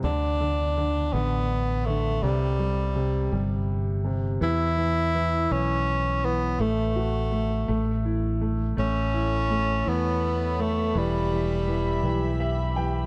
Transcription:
<<
  \new Staff \with { instrumentName = "String section" } { \time 6/8 \key e \dorian \tempo 4. = 55 << { r2. | r2. | r2. | r2. |
b''2.~ | b''2. | } \\ { r2. | r2. | r2. | r2. |
<a' cis''>2. | <g' e''>2. | } >> }
  \new Staff \with { instrumentName = "Tenor saxophone" } { \time 6/8 \key e \dorian d'4. b4 a8 | g2 r4 | e'4. cis'4 b8 | a2 r4 |
cis'4. b4 a8 | g2 r4 | }
  \new Staff \with { instrumentName = "Upright piano" } { \time 6/8 \key e \dorian r2. | r2. | r2. | r2. |
r2. | r2 e''8 g''8 | }
  \new Staff \with { instrumentName = "Upright piano" } { \clef bass \time 6/8 \key e \dorian d8 d8 d8 d4 d8 | c8 g8 c8 g4 c8 | e8 e8 e8 e4 e8 | a8 fis'8 a8 a8 e'8 a8 |
a8 e'8 a8 e'4 a8 | e8 e8 e8 e4 e8 | }
  \new Staff \with { instrumentName = "Fretless electric bass" } { \clef bass \time 6/8 \key e \dorian d,4. a,,4. | c,4. g,,4. | e,4. b,,4. | a,,4. a,,4. |
a,,4. e,4. | e,,4. b,,4. | }
>>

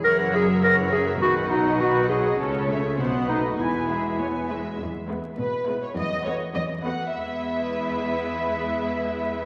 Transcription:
<<
  \new Staff \with { instrumentName = "Violin section" } { \time 2/4 \key e \major \tempo 4 = 102 fis''8 e''8 fis''8 e''8 | fis''8 dis''8 fis''8 dis''8 | cis''8 e''8 fis''8 dis''8 | gis''8 e''8 gis''8 e''8 |
r4 b'8. cis''16 | dis''8 cis''8 dis''8 fis''8 | e''2~ | e''2 | }
  \new Staff \with { instrumentName = "Violin section" } { \time 2/4 \key e \major cis''8 ais'8 cis''8 ais'8 | b'8 fis'8 b'8 fis'8 | a'8 cis''8 c''8 b'8 | b'8 gis'8 cis''8 b'8 |
r8 <e' b'>8 r8 <e' b'>8 | r8 <fis' b'>8 r8 <fis' b'>8 | <e' b'>2~ | <e' b'>2 | }
  \new Staff \with { instrumentName = "Clarinet" } { \time 2/4 \key e \major ais'8 gis'8 ais'8 gis'8 | fis'8 dis'8 fis'8 gis'8 | r4 b8 dis'8 | e'4. r8 |
r2 | r2 | r2 | r2 | }
  \new Staff \with { instrumentName = "Viola section" } { \clef bass \time 2/4 \key e \major e8 fis8 e8 fis8 | dis8 fis8 dis8 fis8 | cis'8 a8 b8 a8 | b8 gis8 b8 gis8 |
r8 <gis b>8 r8 <gis b>8 | r8 <a b>8 r8 <a b>8 | <gis b>2~ | <gis b>2 | }
  \new Staff \with { instrumentName = "Cello section" } { \clef bass \time 2/4 \key e \major fis,2 | b,2 | cis4 b,4 | e,4. r8 |
e,4 b,4 | e,4 e,4 | e,2~ | e,2 | }
  \new Staff \with { instrumentName = "Double bass section" } { \clef bass \time 2/4 \key e \major fis,,2 | b,,2 | cis,4 b,,4 | e,,4. r8 |
r2 | r2 | r2 | r2 | }
>>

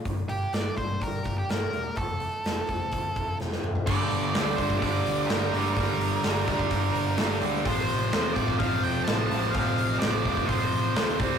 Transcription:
<<
  \new Staff \with { instrumentName = "Lead electric guitar" } { \time 4/4 \key g \minor \tempo 4 = 127 r8 g'8 d''8 c''8 bes'8. g'16 bes'4 | a'2. r4 | d''4. c''8 d''4 bes'4 | bes'2.~ bes'8 r8 |
c''4. d''8 f''8 g''8 a''8 a''8 | f''4 d''4 c''4. r8 | }
  \new Staff \with { instrumentName = "Steel-string acoustic guitar" } { \time 4/4 \key g \minor g,8 bes8 g8 d'8 g'8 bes8 d'8 g'8 | f,8 a8 f8 c'8 f'8 a8 c'8 f'8 | r1 | r1 |
r1 | r1 | }
  \new Staff \with { instrumentName = "Overdriven electric guitar" } { \clef bass \time 4/4 \key g \minor r1 | r1 | <g, d g>4 <g, d g>8 <g, d g>8 <g, d g>4 <g, d g>8 <g, d g>8 | <g, d g>4 <g, d g>8 <g, d g>8 <g, d g>4 <g, d g>8 <g, d g>8 |
<f, c f>4 <f, c f>8 <f, c f>8 <f, c f>4 <f, c f>8 <f, c f>8 | <f, c f>4 <f, c f>8 <f, c f>8 <f, c f>4 <f, c f>8 <c g c'>8 | }
  \new Staff \with { instrumentName = "Overdriven electric guitar" } { \clef bass \time 4/4 \key g \minor r1 | r1 | <g, d g>4 <g, d g>8 <g, d g>8 <g, d g>4 <g, d g>8 <g, d g>8 | <g, d g>4 <g, d g>8 <g, d g>8 <g, d g>4 <g, d g>8 <g, d g>8 |
<f, c f>4 <f, c f>8 <f, c f>8 <f, c f>4 <f, c f>8 <f, c f>8 | <f, c f>4 <f, c f>8 <f, c f>8 <f, c f>4 <f, c f>8 <c g c'>8 | }
  \new Staff \with { instrumentName = "Picked electric bass" } { \clef bass \time 4/4 \key g \minor g,,8 g,,8 g,,8 g,,8 g,,8 g,,8 g,,8 e,,8 | f,,4 f,,8 f,,8 d,8 f,,8 f,,8 f,,8 | g,,8 g,,8 d,8 g,,8 g,,8 d,8 g,,8 g,,8 | g,,4 g,,8 d,8 g,,8 g,,8 g,,8 d,8 |
a,,8 a,,8 e,8 a,,8 a,,8 e,,8 a,,8 a,,8 | a,,4 a,,8 e,,8 a,,8 a,,8 d,8 c,8 | }
  \new DrumStaff \with { instrumentName = "Drums" } \drummode { \time 4/4 <hho bd>8 hho8 <hho sn>8 <hho bd>8 <hho bd>8 <hho bd>8 <hho sn>8 hho8 | <hho bd>8 hho8 <hho sn>8 <hho bd>8 <hho bd>8 <hho bd>8 sn16 sn16 toml16 tomfh16 | <cymc bd>8 hho8 <hho sn>8 <hho bd>16 bd16 <hho bd>8 hho8 <hho sn>8 hho8 | <hho bd>8 hho8 <hho sn>8 <hho bd>16 bd16 <hho bd>8 hho8 <hho sn>8 hho8 |
<hho bd>8 hho8 <hho sn>8 <hho bd>16 <bd sn>16 <hho bd>8 hho8 <hho sn>8 hho8 | <hho bd>8 hho8 <hho sn>8 <hho bd>16 bd16 <hho bd>8 hho8 <hho sn>8 <hho bd>8 | }
>>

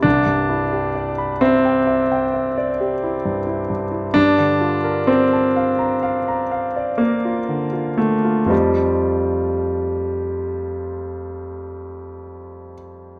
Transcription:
\new Staff \with { instrumentName = "Grand piano" } { \time 9/8 \key c \lydian \tempo 4. = 42 << { c,16 g,16 e'16 g'16 d''16 b''16 e''16 g''16 e''16 g''16 e''16 d''16 g'16 e'16 g,16 e'16 g,16 e'16 | \key f \mixolydian g,16 d16 f'16 bes'16 d''16 a''16 f''16 bes''16 f''16 bes''16 f''16 d''16 bes'16 f'16 d16 f'16 d16 f'16 | <f, f' c'' ees'' a''>1~ <f, f' c'' ees'' a''>8 | } \\ { d'4. c'2~ c'8 r8 | d'4 c'2 bes4 a8 | g1 r8 | } >> }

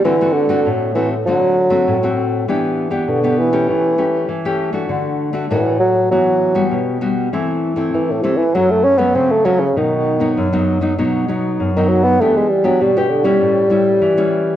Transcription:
<<
  \new Staff \with { instrumentName = "Nylon-string guitar" } { \time 4/4 \key d \mixolydian \tempo 4 = 99 << { <a c' fis'>16 <a c' fis'>8 <a c' fis'>8. <a c' fis'>16 r16 <a c' fis'>8 r16 <a c' fis'>8 <a c' fis'>8. | \key e \minor <b d' g'>8. <b d' g'>8 <b d' g'>8 <a cis' g'>8. <a cis' g'>8 r16 <a cis' g'>8 <a d' fis'>16~ | <a d' fis'>8. <a d' fis'>16 <a d' fis'>8. r16 <b fis'>8. <g b fis'>8. <g b fis'>8 | <a c' e'>8. <a c' e'>8. <a c' e'>16 r16 <fis a cis'>8 r16 <fis a cis'>8. <fis a cis'>16 r16 |
<fis b dis'>8. <fis b dis'>8 <fis b dis'>8 <fis b dis'>16 <fis b dis'>8 <fis b dis'>8. <fis b dis'>8. | <b d' g'>8 r16 <b d' g'>8 <b d' g'>8 <g cis' e'>8. <g cis' e'>8. <g cis' e'>8. | } \\ { d4 a,4 d4 a,4 | e4 b,4 e4 e4 | d4 a,4 e4 b,4 | e4 e4 fis,4 cis4 |
b,4 fis,4 b,4 fis,4 | e4 b,4 a,4 e4 | } >> }
  \new Staff \with { instrumentName = "Bassoon" } { \clef bass \time 4/4 \key d \mixolydian e8 d8 r8 e8 fis4. r8 | \key e \minor r4 d8 e8 e4 r4 | r4 e8 fis8 fis4 r4 | r4 e16 a,16 c16 e16 fis16 a16 cis'16 b16 c'16 a16 fis16 cis16 |
dis4 r2 r16 dis16 fis16 b16 | a16 gis16 g16 fis16 g16 b,16 d16 g2~ g16 | }
>>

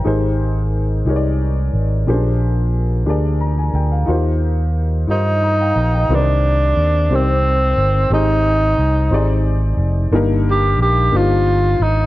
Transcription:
<<
  \new Staff \with { instrumentName = "Upright piano" } { \time 6/8 \key ees \major \tempo 4. = 60 << { g''16 r2 r8. | r2 bes''16 aes''16 g''16 f''16~ | f''16 r4. r16 <ees'' bes''>16 <f'' g''>16 f''16 g''16~ | g''16 r2 r8. |
r2. | r2. | } \\ { <ees' g' aes' bes' c''>4~ <ees' g' aes' bes' c''>16 r16 <ees' g' aes' bes' des'' d''>4~ <ees' g' aes' bes' des'' d''>16 r16 | <des' d' g' aes' bes' c''>4~ <des' d' g' aes' bes' c''>16 r16 <d' g' aes' bes' d''>4~ <d' g' aes' bes' d''>16 r16 | <ees' f' ges' g' bes' c''>4~ <ees' f' ges' g' bes' c''>16 r16 <ees' f' g' bes' c''>4~ <ees' f' g' bes' c''>16 r16 | <ees c' g' bes' ces'' c''>4~ <ees c' g' bes' ces'' c''>16 r16 <c' ees' g' bes' c''>4~ <c' ees' g' bes' c''>16 r16 |
<c' ees' g' aes' c''>4~ <c' ees' g' aes' c''>16 r16 <c' ees' g' aes' d''>4~ <c' ees' g' aes' d''>16 r16 | <bes d' ees' g' bes'>4~ <bes d' ees' g' bes'>16 r16 <bes d' ees' f' g' c''>4~ <bes d' ees' f' g' c''>16 r16 | } >> }
  \new Staff \with { instrumentName = "Upright piano" } { \clef bass \time 6/8 \key ees \major aes,4. r4. | bes,4. r4. | ees4. r4. | c4. r4. |
aes,4. r4. | g,4. r4. | }
  \new Staff \with { instrumentName = "Tenor saxophone" } { \time 6/8 \key ees \major r2. | r2. | r4. ees'4. | d'4. c'4. |
ees'2 r4 | r8 g'8 g'8 f'4 ees'8 | }
  \new Staff \with { instrumentName = "Fingered electric bass" } { \clef bass \time 6/8 \key ees \major aes,,4. c,4 aes,,8 | bes,,4. d,4 d,8 | ees,4. g,4 bes,,8 | c,4 ees,8 c,4 g,,8 |
aes,,4 c,8 aes,,4 f,,8 | g,,4 bes,,8 g,,4 aes,,8 | }
>>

